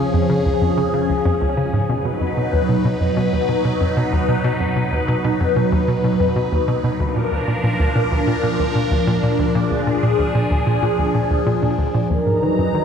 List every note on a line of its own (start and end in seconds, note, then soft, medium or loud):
0.00 1.85 F3 medium
0.00 1.86 C#4 medium
0.00 1.86 G#4 medium
0.14 0.25 F2 medium
0.30 0.37 C#3 medium
0.46 0.50 C#2 medium
0.62 0.73 F2 medium
0.78 0.85 C#3 medium
0.94 1.01 C#3 medium
1.10 1.21 C#2 medium
1.25 1.33 F2 medium
1.42 1.53 C#2 medium
1.57 1.65 C#3 medium
1.73 1.81 G#2 medium
1.89 1.97 B2 medium
1.89 6.96 F#3 medium
1.89 6.96 D#4 medium
1.89 6.96 B4 medium
2.05 2.10 B2 medium
2.21 2.33 F2 medium
2.37 2.45 B2 medium
2.53 2.64 D#2 medium
2.69 2.77 B2 medium
2.85 2.90 B2 medium
3.01 3.12 F2 medium
3.17 3.24 B2 medium
3.33 3.44 D#2 medium
3.49 3.56 B2 medium
3.65 3.69 B2 medium
3.81 3.92 F2 medium
3.97 4.04 B2 medium
4.13 4.24 D#2 medium
4.29 4.36 B2 medium
4.44 4.49 B2 medium
4.60 4.72 F2 medium
4.76 4.84 B2 medium
4.92 5.04 D#2 medium
5.08 5.16 B2 medium
5.24 5.29 B2 medium
5.41 5.52 F2 medium
5.56 5.64 B2 medium
5.72 5.84 D#2 medium
5.88 5.96 B2 medium
6.04 6.09 B2 medium
6.20 6.31 F2 medium
6.36 6.44 B2 medium
6.52 6.63 D#2 medium
6.68 6.76 B2 medium
6.84 6.89 B2 medium
7.00 7.11 D2 medium
7.00 12.07 F3 medium
7.00 12.07 D4 medium
7.00 9.53 A#4 medium
7.16 7.24 A#2 medium
7.32 7.43 D2 medium
7.48 7.55 A#2 medium
7.64 7.68 A#2 medium
7.80 7.91 D2 medium
7.96 8.03 A#2 medium
8.12 8.23 D2 medium
8.27 8.35 A#2 medium
8.43 8.48 A#2 medium
8.60 8.71 D2 medium
8.75 8.83 A#2 medium
8.91 9.03 D2 medium
9.07 9.15 A#2 medium
9.23 9.28 A#2 medium
9.39 9.51 D2 medium
9.55 9.63 A#2 medium
9.55 12.08 G#4 medium
9.71 9.82 D2 medium
9.87 9.95 A#2 medium
10.03 10.08 A#2 medium
10.19 10.30 D2 medium
10.35 10.43 A#2 medium
10.51 10.62 D2 medium
10.67 10.74 A#2 medium
10.83 10.87 A#2 medium
10.99 11.10 D2 medium
11.15 11.22 A#2 medium
11.31 11.42 D2 medium
11.47 11.54 A#2 medium
11.63 11.67 A#2 medium
11.79 11.90 D2 medium
11.95 12.02 A#2 medium
12.10 12.15 D#2 medium
12.10 12.85 F#3 medium
12.10 12.85 D#4 medium
12.10 12.44 A#4 medium
12.10 12.85 A#5 medium
12.27 12.38 G#2 medium
12.42 12.50 D#3 medium
12.42 12.85 B4 loud
12.59 12.70 F#2 medium
12.75 12.82 D#3 medium